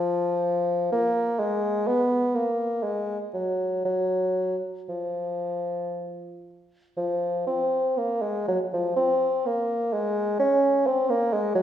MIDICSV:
0, 0, Header, 1, 2, 480
1, 0, Start_track
1, 0, Tempo, 944882
1, 467, Time_signature, 3, 2, 24, 8
1, 1436, Tempo, 1027397
1, 3836, Tempo, 978793
1, 4796, Tempo, 937500
1, 5668, End_track
2, 0, Start_track
2, 0, Title_t, "Bassoon"
2, 0, Program_c, 0, 70
2, 0, Note_on_c, 0, 53, 84
2, 445, Note_off_c, 0, 53, 0
2, 468, Note_on_c, 0, 58, 86
2, 708, Note_on_c, 0, 56, 83
2, 716, Note_off_c, 0, 58, 0
2, 951, Note_on_c, 0, 59, 86
2, 959, Note_off_c, 0, 56, 0
2, 1196, Note_on_c, 0, 58, 69
2, 1204, Note_off_c, 0, 59, 0
2, 1438, Note_on_c, 0, 56, 72
2, 1445, Note_off_c, 0, 58, 0
2, 1604, Note_off_c, 0, 56, 0
2, 1674, Note_on_c, 0, 54, 57
2, 1906, Note_off_c, 0, 54, 0
2, 1913, Note_on_c, 0, 54, 67
2, 2250, Note_off_c, 0, 54, 0
2, 2399, Note_on_c, 0, 53, 50
2, 3106, Note_off_c, 0, 53, 0
2, 3372, Note_on_c, 0, 53, 60
2, 3591, Note_off_c, 0, 53, 0
2, 3606, Note_on_c, 0, 60, 70
2, 3840, Note_on_c, 0, 58, 61
2, 3848, Note_off_c, 0, 60, 0
2, 3960, Note_on_c, 0, 56, 65
2, 3967, Note_off_c, 0, 58, 0
2, 4081, Note_off_c, 0, 56, 0
2, 4089, Note_on_c, 0, 54, 64
2, 4142, Note_off_c, 0, 54, 0
2, 4213, Note_on_c, 0, 53, 61
2, 4324, Note_off_c, 0, 53, 0
2, 4327, Note_on_c, 0, 60, 83
2, 4568, Note_on_c, 0, 58, 65
2, 4575, Note_off_c, 0, 60, 0
2, 4800, Note_on_c, 0, 56, 80
2, 4808, Note_off_c, 0, 58, 0
2, 5035, Note_off_c, 0, 56, 0
2, 5038, Note_on_c, 0, 61, 86
2, 5279, Note_on_c, 0, 60, 76
2, 5286, Note_off_c, 0, 61, 0
2, 5398, Note_on_c, 0, 58, 85
2, 5405, Note_off_c, 0, 60, 0
2, 5517, Note_on_c, 0, 56, 76
2, 5525, Note_off_c, 0, 58, 0
2, 5627, Note_off_c, 0, 56, 0
2, 5630, Note_on_c, 0, 54, 75
2, 5668, Note_off_c, 0, 54, 0
2, 5668, End_track
0, 0, End_of_file